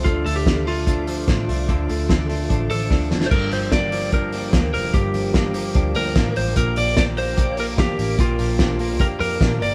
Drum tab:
CC |----------------|----------------|x---------------|----------------|
HH |x-o-x-o-x-o-x-o-|x-o-x-o-x-o-----|--o-x-o-x-o-x-o-|x-o-x-o-x-o-x-o-|
SD |----o-------o---|----o-------o-oo|----o-------o---|----o-------o---|
BD |o---o---o---o---|o---o---o---o---|o---o---o---o---|o---o---o---o---|

CC |----------------|----------------|
HH |x-o-x-o-x-o-x-o-|x-o-x-o-x-o-x-o-|
SD |----o-------o---|----o-------o---|
BD |o---o---o---o---|o---o---o---o---|